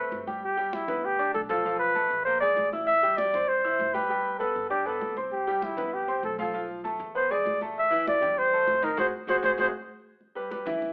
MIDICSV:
0, 0, Header, 1, 5, 480
1, 0, Start_track
1, 0, Key_signature, 1, "major"
1, 0, Tempo, 305344
1, 673, Time_signature, 4, 2, 24, 8
1, 17180, End_track
2, 0, Start_track
2, 0, Title_t, "Flugelhorn"
2, 0, Program_c, 0, 56
2, 0, Note_on_c, 0, 71, 94
2, 390, Note_off_c, 0, 71, 0
2, 690, Note_on_c, 0, 67, 92
2, 1158, Note_on_c, 0, 64, 87
2, 1182, Note_off_c, 0, 67, 0
2, 1651, Note_on_c, 0, 67, 98
2, 1674, Note_off_c, 0, 64, 0
2, 2102, Note_off_c, 0, 67, 0
2, 2111, Note_on_c, 0, 69, 90
2, 2221, Note_off_c, 0, 69, 0
2, 2347, Note_on_c, 0, 69, 90
2, 2800, Note_off_c, 0, 69, 0
2, 2817, Note_on_c, 0, 71, 107
2, 3498, Note_off_c, 0, 71, 0
2, 3539, Note_on_c, 0, 72, 102
2, 3767, Note_off_c, 0, 72, 0
2, 3777, Note_on_c, 0, 74, 110
2, 4235, Note_off_c, 0, 74, 0
2, 4508, Note_on_c, 0, 76, 114
2, 4987, Note_on_c, 0, 74, 99
2, 5010, Note_off_c, 0, 76, 0
2, 5476, Note_on_c, 0, 72, 112
2, 5500, Note_off_c, 0, 74, 0
2, 6189, Note_on_c, 0, 71, 97
2, 6213, Note_off_c, 0, 72, 0
2, 6888, Note_off_c, 0, 71, 0
2, 6897, Note_on_c, 0, 69, 98
2, 7355, Note_off_c, 0, 69, 0
2, 7385, Note_on_c, 0, 67, 97
2, 7638, Note_on_c, 0, 69, 95
2, 7661, Note_off_c, 0, 67, 0
2, 8120, Note_off_c, 0, 69, 0
2, 8361, Note_on_c, 0, 67, 89
2, 8864, Note_on_c, 0, 64, 84
2, 8888, Note_off_c, 0, 67, 0
2, 9335, Note_on_c, 0, 67, 95
2, 9359, Note_off_c, 0, 64, 0
2, 9808, Note_off_c, 0, 67, 0
2, 9819, Note_on_c, 0, 69, 85
2, 10034, Note_off_c, 0, 69, 0
2, 10055, Note_on_c, 0, 69, 81
2, 10494, Note_off_c, 0, 69, 0
2, 11256, Note_on_c, 0, 72, 104
2, 11495, Note_on_c, 0, 74, 107
2, 11518, Note_off_c, 0, 72, 0
2, 11967, Note_off_c, 0, 74, 0
2, 12230, Note_on_c, 0, 76, 115
2, 12661, Note_off_c, 0, 76, 0
2, 12704, Note_on_c, 0, 74, 110
2, 13176, Note_on_c, 0, 72, 109
2, 13199, Note_off_c, 0, 74, 0
2, 13899, Note_on_c, 0, 70, 94
2, 13923, Note_off_c, 0, 72, 0
2, 14127, Note_off_c, 0, 70, 0
2, 14141, Note_on_c, 0, 72, 97
2, 14248, Note_off_c, 0, 72, 0
2, 14613, Note_on_c, 0, 72, 101
2, 14723, Note_off_c, 0, 72, 0
2, 14846, Note_on_c, 0, 72, 101
2, 14958, Note_off_c, 0, 72, 0
2, 15094, Note_on_c, 0, 72, 96
2, 15203, Note_off_c, 0, 72, 0
2, 17180, End_track
3, 0, Start_track
3, 0, Title_t, "Grand piano"
3, 0, Program_c, 1, 0
3, 0, Note_on_c, 1, 57, 68
3, 0, Note_on_c, 1, 60, 68
3, 0, Note_on_c, 1, 69, 69
3, 346, Note_off_c, 1, 57, 0
3, 352, Note_off_c, 1, 69, 0
3, 353, Note_off_c, 1, 60, 0
3, 427, Note_on_c, 1, 67, 82
3, 430, Note_on_c, 1, 79, 71
3, 432, Note_on_c, 1, 55, 76
3, 627, Note_off_c, 1, 67, 0
3, 629, Note_off_c, 1, 55, 0
3, 629, Note_off_c, 1, 79, 0
3, 901, Note_on_c, 1, 67, 83
3, 903, Note_on_c, 1, 55, 83
3, 903, Note_on_c, 1, 79, 76
3, 1301, Note_off_c, 1, 67, 0
3, 1302, Note_off_c, 1, 55, 0
3, 1302, Note_off_c, 1, 79, 0
3, 1383, Note_on_c, 1, 59, 69
3, 1395, Note_on_c, 1, 71, 76
3, 1395, Note_on_c, 1, 83, 71
3, 1783, Note_off_c, 1, 59, 0
3, 1790, Note_off_c, 1, 71, 0
3, 1790, Note_off_c, 1, 83, 0
3, 1868, Note_on_c, 1, 62, 74
3, 1873, Note_on_c, 1, 74, 71
3, 1874, Note_on_c, 1, 86, 74
3, 2266, Note_off_c, 1, 62, 0
3, 2269, Note_off_c, 1, 74, 0
3, 2270, Note_off_c, 1, 86, 0
3, 2349, Note_on_c, 1, 53, 89
3, 2355, Note_on_c, 1, 77, 76
3, 2358, Note_on_c, 1, 65, 76
3, 2550, Note_off_c, 1, 53, 0
3, 2554, Note_off_c, 1, 77, 0
3, 2555, Note_off_c, 1, 65, 0
3, 2594, Note_on_c, 1, 53, 83
3, 2598, Note_on_c, 1, 65, 77
3, 2605, Note_on_c, 1, 77, 77
3, 2990, Note_off_c, 1, 53, 0
3, 2992, Note_off_c, 1, 65, 0
3, 2997, Note_off_c, 1, 77, 0
3, 3060, Note_on_c, 1, 57, 68
3, 3065, Note_on_c, 1, 69, 73
3, 3071, Note_on_c, 1, 81, 75
3, 3462, Note_off_c, 1, 57, 0
3, 3465, Note_off_c, 1, 69, 0
3, 3469, Note_off_c, 1, 81, 0
3, 3559, Note_on_c, 1, 70, 67
3, 3560, Note_on_c, 1, 58, 73
3, 3564, Note_on_c, 1, 82, 72
3, 3757, Note_off_c, 1, 58, 0
3, 3757, Note_off_c, 1, 70, 0
3, 3759, Note_off_c, 1, 82, 0
3, 3794, Note_on_c, 1, 56, 73
3, 3801, Note_on_c, 1, 68, 78
3, 3807, Note_on_c, 1, 80, 71
3, 4191, Note_off_c, 1, 56, 0
3, 4195, Note_off_c, 1, 68, 0
3, 4199, Note_off_c, 1, 80, 0
3, 4283, Note_on_c, 1, 64, 79
3, 4287, Note_on_c, 1, 76, 72
3, 4294, Note_on_c, 1, 88, 71
3, 4676, Note_off_c, 1, 64, 0
3, 4679, Note_off_c, 1, 76, 0
3, 4683, Note_off_c, 1, 88, 0
3, 4756, Note_on_c, 1, 55, 89
3, 4765, Note_on_c, 1, 67, 78
3, 4767, Note_on_c, 1, 79, 90
3, 5152, Note_off_c, 1, 55, 0
3, 5158, Note_off_c, 1, 67, 0
3, 5159, Note_off_c, 1, 79, 0
3, 5252, Note_on_c, 1, 60, 74
3, 5259, Note_on_c, 1, 72, 77
3, 5264, Note_on_c, 1, 84, 69
3, 5642, Note_off_c, 1, 60, 0
3, 5646, Note_off_c, 1, 72, 0
3, 5649, Note_off_c, 1, 84, 0
3, 5724, Note_on_c, 1, 64, 75
3, 5729, Note_on_c, 1, 76, 80
3, 5730, Note_on_c, 1, 88, 75
3, 6117, Note_off_c, 1, 64, 0
3, 6120, Note_off_c, 1, 76, 0
3, 6120, Note_off_c, 1, 88, 0
3, 6193, Note_on_c, 1, 55, 86
3, 6200, Note_on_c, 1, 67, 89
3, 6201, Note_on_c, 1, 79, 85
3, 6394, Note_off_c, 1, 55, 0
3, 6398, Note_off_c, 1, 67, 0
3, 6399, Note_off_c, 1, 79, 0
3, 6437, Note_on_c, 1, 55, 79
3, 6443, Note_on_c, 1, 67, 76
3, 6451, Note_on_c, 1, 79, 77
3, 6833, Note_off_c, 1, 55, 0
3, 6836, Note_off_c, 1, 67, 0
3, 6841, Note_off_c, 1, 79, 0
3, 6915, Note_on_c, 1, 71, 74
3, 6916, Note_on_c, 1, 59, 74
3, 6924, Note_on_c, 1, 83, 71
3, 7312, Note_off_c, 1, 59, 0
3, 7312, Note_off_c, 1, 71, 0
3, 7317, Note_off_c, 1, 83, 0
3, 7390, Note_on_c, 1, 62, 69
3, 7395, Note_on_c, 1, 74, 71
3, 7399, Note_on_c, 1, 86, 70
3, 7592, Note_off_c, 1, 62, 0
3, 7595, Note_off_c, 1, 74, 0
3, 7597, Note_off_c, 1, 86, 0
3, 7634, Note_on_c, 1, 59, 69
3, 7641, Note_on_c, 1, 71, 68
3, 7648, Note_on_c, 1, 83, 74
3, 8031, Note_off_c, 1, 59, 0
3, 8035, Note_off_c, 1, 71, 0
3, 8039, Note_off_c, 1, 83, 0
3, 8119, Note_on_c, 1, 60, 67
3, 8126, Note_on_c, 1, 72, 69
3, 8135, Note_on_c, 1, 84, 70
3, 8514, Note_off_c, 1, 60, 0
3, 8518, Note_off_c, 1, 72, 0
3, 8523, Note_off_c, 1, 84, 0
3, 8603, Note_on_c, 1, 55, 91
3, 8608, Note_on_c, 1, 67, 84
3, 8618, Note_on_c, 1, 79, 80
3, 8995, Note_off_c, 1, 55, 0
3, 8999, Note_off_c, 1, 67, 0
3, 9005, Note_off_c, 1, 79, 0
3, 9073, Note_on_c, 1, 59, 68
3, 9078, Note_on_c, 1, 71, 69
3, 9080, Note_on_c, 1, 83, 72
3, 9469, Note_off_c, 1, 59, 0
3, 9473, Note_off_c, 1, 71, 0
3, 9474, Note_off_c, 1, 83, 0
3, 9553, Note_on_c, 1, 60, 73
3, 9561, Note_on_c, 1, 72, 77
3, 9565, Note_on_c, 1, 84, 79
3, 9949, Note_off_c, 1, 60, 0
3, 9954, Note_off_c, 1, 72, 0
3, 9956, Note_off_c, 1, 84, 0
3, 10035, Note_on_c, 1, 53, 76
3, 10041, Note_on_c, 1, 65, 76
3, 10053, Note_on_c, 1, 77, 89
3, 10234, Note_off_c, 1, 53, 0
3, 10238, Note_off_c, 1, 65, 0
3, 10245, Note_off_c, 1, 77, 0
3, 10274, Note_on_c, 1, 53, 73
3, 10279, Note_on_c, 1, 65, 77
3, 10287, Note_on_c, 1, 77, 76
3, 10670, Note_off_c, 1, 53, 0
3, 10673, Note_off_c, 1, 65, 0
3, 10677, Note_off_c, 1, 77, 0
3, 10751, Note_on_c, 1, 57, 72
3, 10754, Note_on_c, 1, 69, 69
3, 10760, Note_on_c, 1, 81, 76
3, 11148, Note_off_c, 1, 57, 0
3, 11150, Note_off_c, 1, 69, 0
3, 11153, Note_off_c, 1, 81, 0
3, 11237, Note_on_c, 1, 59, 69
3, 11245, Note_on_c, 1, 71, 75
3, 11245, Note_on_c, 1, 83, 74
3, 11435, Note_off_c, 1, 59, 0
3, 11439, Note_off_c, 1, 83, 0
3, 11440, Note_off_c, 1, 71, 0
3, 11480, Note_on_c, 1, 56, 73
3, 11485, Note_on_c, 1, 68, 77
3, 11493, Note_on_c, 1, 80, 76
3, 11873, Note_off_c, 1, 56, 0
3, 11876, Note_off_c, 1, 68, 0
3, 11881, Note_off_c, 1, 80, 0
3, 11970, Note_on_c, 1, 57, 72
3, 11974, Note_on_c, 1, 69, 74
3, 11980, Note_on_c, 1, 81, 74
3, 12358, Note_off_c, 1, 57, 0
3, 12361, Note_off_c, 1, 69, 0
3, 12364, Note_off_c, 1, 81, 0
3, 12425, Note_on_c, 1, 52, 86
3, 12434, Note_on_c, 1, 64, 89
3, 12438, Note_on_c, 1, 76, 86
3, 12824, Note_off_c, 1, 52, 0
3, 12829, Note_off_c, 1, 64, 0
3, 12831, Note_off_c, 1, 76, 0
3, 12904, Note_on_c, 1, 55, 70
3, 12911, Note_on_c, 1, 67, 70
3, 12919, Note_on_c, 1, 79, 76
3, 13303, Note_off_c, 1, 55, 0
3, 13307, Note_off_c, 1, 67, 0
3, 13312, Note_off_c, 1, 79, 0
3, 13406, Note_on_c, 1, 57, 73
3, 13408, Note_on_c, 1, 69, 78
3, 13416, Note_on_c, 1, 81, 73
3, 13796, Note_off_c, 1, 57, 0
3, 13797, Note_off_c, 1, 69, 0
3, 13801, Note_off_c, 1, 81, 0
3, 13865, Note_on_c, 1, 51, 82
3, 13871, Note_on_c, 1, 63, 92
3, 13876, Note_on_c, 1, 75, 85
3, 14067, Note_off_c, 1, 51, 0
3, 14070, Note_off_c, 1, 63, 0
3, 14073, Note_off_c, 1, 75, 0
3, 14108, Note_on_c, 1, 66, 95
3, 14109, Note_on_c, 1, 68, 102
3, 14112, Note_on_c, 1, 72, 96
3, 14265, Note_off_c, 1, 66, 0
3, 14266, Note_off_c, 1, 68, 0
3, 14267, Note_off_c, 1, 72, 0
3, 14586, Note_on_c, 1, 72, 100
3, 14593, Note_on_c, 1, 68, 95
3, 14594, Note_on_c, 1, 66, 102
3, 14743, Note_off_c, 1, 72, 0
3, 14748, Note_off_c, 1, 66, 0
3, 14748, Note_off_c, 1, 68, 0
3, 14815, Note_on_c, 1, 72, 94
3, 14820, Note_on_c, 1, 66, 94
3, 14821, Note_on_c, 1, 68, 96
3, 14976, Note_off_c, 1, 72, 0
3, 14980, Note_off_c, 1, 66, 0
3, 14980, Note_off_c, 1, 68, 0
3, 15056, Note_on_c, 1, 66, 91
3, 15059, Note_on_c, 1, 68, 101
3, 15059, Note_on_c, 1, 72, 98
3, 15217, Note_off_c, 1, 66, 0
3, 15219, Note_off_c, 1, 68, 0
3, 15219, Note_off_c, 1, 72, 0
3, 16276, Note_on_c, 1, 55, 77
3, 16281, Note_on_c, 1, 67, 72
3, 16288, Note_on_c, 1, 71, 71
3, 16472, Note_off_c, 1, 55, 0
3, 16474, Note_off_c, 1, 67, 0
3, 16479, Note_off_c, 1, 71, 0
3, 16515, Note_on_c, 1, 55, 74
3, 16515, Note_on_c, 1, 67, 73
3, 16527, Note_on_c, 1, 71, 68
3, 16711, Note_off_c, 1, 55, 0
3, 16711, Note_off_c, 1, 67, 0
3, 16718, Note_off_c, 1, 71, 0
3, 16750, Note_on_c, 1, 52, 83
3, 16763, Note_on_c, 1, 64, 77
3, 16767, Note_on_c, 1, 76, 85
3, 17144, Note_off_c, 1, 52, 0
3, 17152, Note_off_c, 1, 64, 0
3, 17154, Note_off_c, 1, 76, 0
3, 17180, End_track
4, 0, Start_track
4, 0, Title_t, "Upright bass"
4, 0, Program_c, 2, 32
4, 0, Note_on_c, 2, 33, 68
4, 179, Note_off_c, 2, 33, 0
4, 186, Note_on_c, 2, 31, 94
4, 1306, Note_off_c, 2, 31, 0
4, 1386, Note_on_c, 2, 38, 93
4, 2062, Note_off_c, 2, 38, 0
4, 2118, Note_on_c, 2, 35, 93
4, 3233, Note_off_c, 2, 35, 0
4, 3309, Note_on_c, 2, 34, 94
4, 3984, Note_off_c, 2, 34, 0
4, 4031, Note_on_c, 2, 33, 96
4, 5150, Note_off_c, 2, 33, 0
4, 5242, Note_on_c, 2, 36, 92
4, 5912, Note_off_c, 2, 36, 0
4, 5960, Note_on_c, 2, 31, 97
4, 7074, Note_off_c, 2, 31, 0
4, 7164, Note_on_c, 2, 43, 91
4, 7833, Note_off_c, 2, 43, 0
4, 7873, Note_on_c, 2, 36, 84
4, 8990, Note_off_c, 2, 36, 0
4, 9068, Note_on_c, 2, 36, 94
4, 9743, Note_off_c, 2, 36, 0
4, 9790, Note_on_c, 2, 35, 93
4, 10907, Note_off_c, 2, 35, 0
4, 10996, Note_on_c, 2, 40, 98
4, 11667, Note_off_c, 2, 40, 0
4, 11720, Note_on_c, 2, 33, 88
4, 12831, Note_off_c, 2, 33, 0
4, 12918, Note_on_c, 2, 40, 95
4, 13587, Note_off_c, 2, 40, 0
4, 13636, Note_on_c, 2, 32, 101
4, 14082, Note_off_c, 2, 32, 0
4, 14099, Note_on_c, 2, 32, 99
4, 14285, Note_off_c, 2, 32, 0
4, 14575, Note_on_c, 2, 32, 94
4, 14763, Note_off_c, 2, 32, 0
4, 14820, Note_on_c, 2, 32, 95
4, 15006, Note_off_c, 2, 32, 0
4, 15051, Note_on_c, 2, 32, 99
4, 15241, Note_off_c, 2, 32, 0
4, 16752, Note_on_c, 2, 38, 85
4, 17180, Note_off_c, 2, 38, 0
4, 17180, End_track
5, 0, Start_track
5, 0, Title_t, "Drums"
5, 188, Note_on_c, 9, 63, 82
5, 345, Note_off_c, 9, 63, 0
5, 434, Note_on_c, 9, 63, 83
5, 591, Note_off_c, 9, 63, 0
5, 679, Note_on_c, 9, 63, 34
5, 836, Note_off_c, 9, 63, 0
5, 919, Note_on_c, 9, 63, 37
5, 1076, Note_off_c, 9, 63, 0
5, 1149, Note_on_c, 9, 63, 93
5, 1306, Note_off_c, 9, 63, 0
5, 1386, Note_on_c, 9, 63, 37
5, 1386, Note_on_c, 9, 64, 87
5, 1543, Note_off_c, 9, 63, 0
5, 1543, Note_off_c, 9, 64, 0
5, 1633, Note_on_c, 9, 63, 35
5, 1790, Note_off_c, 9, 63, 0
5, 1871, Note_on_c, 9, 63, 37
5, 2028, Note_off_c, 9, 63, 0
5, 2116, Note_on_c, 9, 63, 84
5, 2273, Note_off_c, 9, 63, 0
5, 2354, Note_on_c, 9, 63, 84
5, 2511, Note_off_c, 9, 63, 0
5, 2605, Note_on_c, 9, 63, 34
5, 2762, Note_off_c, 9, 63, 0
5, 2839, Note_on_c, 9, 63, 35
5, 2996, Note_off_c, 9, 63, 0
5, 3082, Note_on_c, 9, 63, 62
5, 3239, Note_off_c, 9, 63, 0
5, 3327, Note_on_c, 9, 63, 35
5, 3485, Note_off_c, 9, 63, 0
5, 3564, Note_on_c, 9, 63, 37
5, 3721, Note_off_c, 9, 63, 0
5, 3803, Note_on_c, 9, 63, 35
5, 3960, Note_off_c, 9, 63, 0
5, 4046, Note_on_c, 9, 63, 89
5, 4203, Note_off_c, 9, 63, 0
5, 4287, Note_on_c, 9, 63, 83
5, 4444, Note_off_c, 9, 63, 0
5, 4527, Note_on_c, 9, 63, 35
5, 4684, Note_off_c, 9, 63, 0
5, 4764, Note_on_c, 9, 63, 34
5, 4921, Note_off_c, 9, 63, 0
5, 5003, Note_on_c, 9, 63, 94
5, 5160, Note_off_c, 9, 63, 0
5, 5250, Note_on_c, 9, 63, 37
5, 5250, Note_on_c, 9, 64, 85
5, 5408, Note_off_c, 9, 63, 0
5, 5408, Note_off_c, 9, 64, 0
5, 5492, Note_on_c, 9, 63, 34
5, 5649, Note_off_c, 9, 63, 0
5, 5734, Note_on_c, 9, 63, 37
5, 5891, Note_off_c, 9, 63, 0
5, 5975, Note_on_c, 9, 63, 87
5, 6132, Note_off_c, 9, 63, 0
5, 6219, Note_on_c, 9, 63, 80
5, 6376, Note_off_c, 9, 63, 0
5, 6455, Note_on_c, 9, 63, 35
5, 6612, Note_off_c, 9, 63, 0
5, 6699, Note_on_c, 9, 63, 32
5, 6856, Note_off_c, 9, 63, 0
5, 6929, Note_on_c, 9, 63, 55
5, 7086, Note_off_c, 9, 63, 0
5, 7167, Note_on_c, 9, 63, 38
5, 7324, Note_off_c, 9, 63, 0
5, 7405, Note_on_c, 9, 63, 33
5, 7562, Note_off_c, 9, 63, 0
5, 7644, Note_on_c, 9, 63, 34
5, 7801, Note_off_c, 9, 63, 0
5, 7885, Note_on_c, 9, 63, 87
5, 8042, Note_off_c, 9, 63, 0
5, 8121, Note_on_c, 9, 63, 83
5, 8278, Note_off_c, 9, 63, 0
5, 8364, Note_on_c, 9, 63, 36
5, 8521, Note_off_c, 9, 63, 0
5, 8602, Note_on_c, 9, 63, 35
5, 8759, Note_off_c, 9, 63, 0
5, 8839, Note_on_c, 9, 63, 95
5, 8996, Note_off_c, 9, 63, 0
5, 9085, Note_on_c, 9, 63, 41
5, 9085, Note_on_c, 9, 64, 91
5, 9242, Note_off_c, 9, 63, 0
5, 9242, Note_off_c, 9, 64, 0
5, 9323, Note_on_c, 9, 63, 34
5, 9480, Note_off_c, 9, 63, 0
5, 9563, Note_on_c, 9, 63, 39
5, 9720, Note_off_c, 9, 63, 0
5, 9800, Note_on_c, 9, 63, 90
5, 9957, Note_off_c, 9, 63, 0
5, 10044, Note_on_c, 9, 63, 90
5, 10201, Note_off_c, 9, 63, 0
5, 10280, Note_on_c, 9, 63, 33
5, 10437, Note_off_c, 9, 63, 0
5, 10533, Note_on_c, 9, 63, 36
5, 10691, Note_off_c, 9, 63, 0
5, 10769, Note_on_c, 9, 63, 60
5, 10926, Note_off_c, 9, 63, 0
5, 11020, Note_on_c, 9, 63, 37
5, 11177, Note_off_c, 9, 63, 0
5, 11253, Note_on_c, 9, 63, 34
5, 11410, Note_off_c, 9, 63, 0
5, 11494, Note_on_c, 9, 63, 37
5, 11651, Note_off_c, 9, 63, 0
5, 11733, Note_on_c, 9, 63, 88
5, 11890, Note_off_c, 9, 63, 0
5, 11965, Note_on_c, 9, 63, 94
5, 12122, Note_off_c, 9, 63, 0
5, 12218, Note_on_c, 9, 63, 35
5, 12375, Note_off_c, 9, 63, 0
5, 12460, Note_on_c, 9, 63, 35
5, 12618, Note_off_c, 9, 63, 0
5, 12693, Note_on_c, 9, 63, 96
5, 12850, Note_off_c, 9, 63, 0
5, 12931, Note_on_c, 9, 63, 38
5, 12931, Note_on_c, 9, 64, 94
5, 13088, Note_off_c, 9, 63, 0
5, 13088, Note_off_c, 9, 64, 0
5, 13166, Note_on_c, 9, 63, 35
5, 13323, Note_off_c, 9, 63, 0
5, 13403, Note_on_c, 9, 63, 38
5, 13560, Note_off_c, 9, 63, 0
5, 13638, Note_on_c, 9, 63, 90
5, 13795, Note_off_c, 9, 63, 0
5, 13878, Note_on_c, 9, 63, 87
5, 14035, Note_off_c, 9, 63, 0
5, 14128, Note_on_c, 9, 63, 106
5, 14285, Note_off_c, 9, 63, 0
5, 14607, Note_on_c, 9, 63, 100
5, 14764, Note_off_c, 9, 63, 0
5, 14839, Note_on_c, 9, 63, 104
5, 14996, Note_off_c, 9, 63, 0
5, 15086, Note_on_c, 9, 63, 97
5, 15243, Note_off_c, 9, 63, 0
5, 16044, Note_on_c, 9, 63, 34
5, 16201, Note_off_c, 9, 63, 0
5, 16290, Note_on_c, 9, 63, 34
5, 16447, Note_off_c, 9, 63, 0
5, 16529, Note_on_c, 9, 63, 89
5, 16686, Note_off_c, 9, 63, 0
5, 16768, Note_on_c, 9, 63, 36
5, 16768, Note_on_c, 9, 64, 93
5, 16926, Note_off_c, 9, 63, 0
5, 16926, Note_off_c, 9, 64, 0
5, 17008, Note_on_c, 9, 63, 31
5, 17008, Note_on_c, 9, 64, 68
5, 17165, Note_off_c, 9, 63, 0
5, 17165, Note_off_c, 9, 64, 0
5, 17180, End_track
0, 0, End_of_file